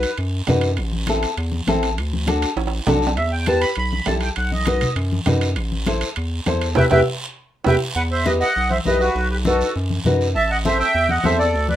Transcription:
Already playing: B4
0.03 high timbale, short guiro
0.17 F#2, high conga, high timbale, long guiro
0.47 F#2 D#4 F#4 B4, high conga, low conga, high timbale, low timbale, short guiro
0.61 high timbale, short guiro
0.77 A1, high conga, high timbale, long guiro
0.93 high conga
1.07 C4 E4 A4, high conga, high timbale, short guiro
1.23 high timbale, short guiro
1.37 E2, high conga, high timbale, long guiro
1.52 high conga
1.67 A1 C4 E4 A4, high conga, high timbale, short guiro
1.83 high timbale, short guiro
1.98 D2, high conga, high timbale, long guiro
2.13 high conga
2.27 D4 F#4 A4, high conga, high timbale, short guiro
2.42 high timbale, short guiro
2.56 A1, high conga, high timbale, long guiro
2.67 high timbale
2.87 B1 D4 F#4 A4, high conga, low conga, low timbale, short guiro
3.02 short guiro
3.07 low timbale
3.17 E2 E5, high conga, high timbale, long guiro
3.32 G5
3.46 E4 G4 B4 A5, high conga, high timbale, short guiro
3.61 B5, high timbale, short guiro
3.75 B1 B5, high conga, high timbale, long guiro
3.93 high conga
4.06 B1 E4 G4 A4 A5, high conga, high timbale, low timbale, short guiro
4.21 G5, high timbale, short guiro
4.36 B1 F#5, high conga, high timbale, long guiro
4.52 D#5, high conga
4.66 D#4 F#4 B4, high conga, high timbale, short guiro
4.81 low conga, high timbale, short guiro
4.96 F#2, high conga, high timbale, long guiro
5.12 high conga
5.26 F#2 D#4 F#4 B4, high conga, low conga, high timbale, low timbale, short guiro
5.41 high timbale, short guiro
5.56 A1, high timbale, long guiro
5.72 high conga
5.86 E4 A4 C5, high conga, high timbale, short guiro
6.01 high timbale, short guiro
6.16 E2, high conga, high timbale, long guiro
6.46 E2 E4 A4 C5, high conga, high timbale, low timbale, short guiro
6.61 high timbale, short guiro
6.75 E2 E4 G4 B4 E5 G5, low conga, high timbale, long guiro
6.91 E2 E4 G4 B4 E5 G5, low conga, high timbale, long guiro
7.64 E2 E4 G4 B4 E5 G5, low conga, high timbale, long guiro
7.96 E2 B4 F#5, high conga, long guiro
8.12 C5 E5
8.25 E4 G4 B4 D#5, high conga, short guiro
8.40 D#5 F#5, short guiro
8.56 B1, high conga, long guiro
8.70 C5 E5, high conga
8.85 B1 E4 G4 B4 D#5, high conga, short guiro
9.00 F#4 B4, short guiro
9.15 B1, high conga, long guiro
9.30 G4 B4
9.45 D#4 F#4 A4 B4, high conga, short guiro
9.61 short guiro
9.76 F#2, high conga, long guiro
9.90 high conga
10.05 F#2 D#4 F#4 B4, high conga, low conga, short guiro
10.21 short guiro
10.35 A1 E5 A5, high conga, long guiro
10.51 D#5 F#5
10.65 C4 E4 A4 C5 E5, high conga, short guiro
10.79 E5 G5, short guiro
10.95 E2, high conga, long guiro
11.09 D#5 F#5, high conga
11.24 E2 C4 E4 A4 C5 E5, high conga, short guiro
11.39 A4 D5, short guiro
11.54 D2, high conga, long guiro
11.68 B4 D5, high conga

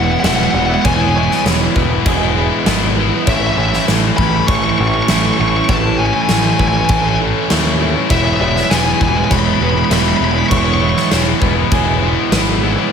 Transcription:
Already playing: E1 E3 G#3 B3 E4 B4 C#5 E5
0.04 F#5
0.08 G#3 B3 E4 F#5
0.20 E1 E3 F#5
0.24 G#3 B3 E4 E5 F#5, snare, crash
0.36 F#5
0.44 F#5
0.51 E1 E3 G#3 F#5
0.56 B3 E4 F#5
0.66 E4 F#5
0.70 G#3 B3 F#5
0.82 E1 E3 G#3 C#5 D#5 F#5 G#5, kick, crash
0.87 B3 E4
0.94 G#5
0.99 G#3 B3 E4 G#5
1.09 G#5
1.14 E3 G#3 B3 E4 C#5 G#5
1.25 G#5
1.29 G#3 B3 E4, snare
1.33 G#5
1.45 E1 E3 G#3 B3 E4, snare, crash
1.60 G#3 B3 E4
1.75 E1 E3 G#3 B3 E4 B4, kick
1.90 G#3 B3 E4
2.06 E1 G#4, kick, crash
2.22 G#3 B3 E4
2.36 E3 G#3 B3 E4
2.50 G#3 B3 E4
2.65 G#1 E3 G#3 B3 E4 B4, snare, crash
2.96 E3 G#3 B3 E4
3.11 G#3 B3 E4
3.26 A1 A2 E3 A3 C#4 E4 A4 C#5 E5, kick, crash
3.37 E5
3.43 A3 C#4 E4 E5
3.53 E3 E5
3.57 A1 A3 C#4 E4
3.61 E5
3.69 E4 E5
3.73 A3 C#4 E5, snare
3.88 A1 A2 E3 A3 C#4 E4 B4, snare, crash
4.03 A3 C#4 E4
4.17 A1 E3 A3 B5, kick
4.21 C#4 E4
4.33 A3 C#4 E4
4.48 A1 C#5 C#6, kick, crash
4.56 C#6
4.64 A3 C#4 E4 C#6
4.70 C#6
4.78 A1 E3 A3 C#4 E4 B4 C#6
4.88 C#6
4.94 A3 C#4 E4 C#6
5.03 C#6
5.08 A1 A2 E3 A3 C#4 E5 C#6, snare, crash
5.13 E4
5.17 C#6
5.26 C#6
5.34 C#6
5.39 A1 E3 A3 C#4 E4 C#6
5.48 C#6
5.53 A3 C#4 E4 C#6
5.65 A2 C#6
5.69 A1 E3 A3 C#4 E4 C#5 A5, kick, crash
5.85 A3 C#4 E4
5.97 E3 A3 C#4 E4 C#5 G#5
6.06 G#5
6.14 A3 C#4 E4 G#5
6.22 G#5
6.28 A1 A2 E3 A3 C#4 E4 G#5, snare, crash
6.38 G#5
6.43 A3 C#4 E4 G#5
6.53 G#5
6.59 A1 E3 A3 C#4 E4 B4 G#5, kick
6.68 G#5
6.74 A3 C#4 E4 G#5
6.85 A1 G#5, crash
6.89 A4 G#5, kick
7.01 C#4 E4 G#5
7.05 A3 G#5
7.20 E3 A3 C#4 E4
7.34 A3 C#4 E4
7.50 D#2 A2 E3 A3 C#4 E4 C#5, snare, crash
7.80 E3 A3 C#4 E4
7.95 A3 C#4 E4
8.09 E1 E3 G#3 B3 E4 B4 C#5 E5 G#5, kick, crash
8.18 E5
8.25 G#3 B3 E4 E5
8.33 E5
8.39 E1 E3 G#3 B3 E4 E5
8.49 E5
8.54 G#3 B3 E4 E5, snare
8.64 E5
8.69 E1 E3 G#3 B3 E4 B4 G#5, snare, crash
8.77 G#5
8.85 G#3 B3 E4 G#5
8.92 G#5
9.00 E1 E3 G#3 B3 E4 G#5, kick
9.09 G#5
9.15 G#3 B3 E4 G#5
9.25 G#5
9.30 E1 C#5 B5, kick, crash
9.39 B5
9.45 G#3 B3 E4 B5
9.54 B5
9.60 E1 E3 G#3 B3 E4 B4 B5
9.70 B5
9.75 G#3 B3 E4 B5
9.85 B5
9.90 E1 E3 G#3 B3 E4 E5 B5, snare, crash
10.01 B5
10.09 B5
10.17 E1 B5
10.21 E3 G#3 B3 E4 B5
10.31 B5
10.36 G#3 B3 E4 B5
10.47 E1 B5 C#6
10.51 E3 G#3 B3 E4 C#5, kick, crash
10.59 C#6
10.65 G#3 B3 E4 C#6
10.74 C#6
10.80 E3 G#3 B3 E4 C#5 C#6
10.90 C#6
10.95 G#3 B3 E4 C#6, snare
11.10 E1 E3 G#3 B3 E4, snare, crash
11.25 G#3 B3 E4
11.40 E1 E3 G#3 B3 E4 B4, kick
11.55 G#3 B3 E4
11.71 E1 G#4, kick, crash
11.87 G#3 B3 E4
12.00 E3 G#3 B3 E4
12.16 G#3 B3 E4
12.31 G#1 E3 G#3 B3 E4 B4, snare, crash
12.61 E3 G#3 B3 E4
12.76 G#3 B3 E4

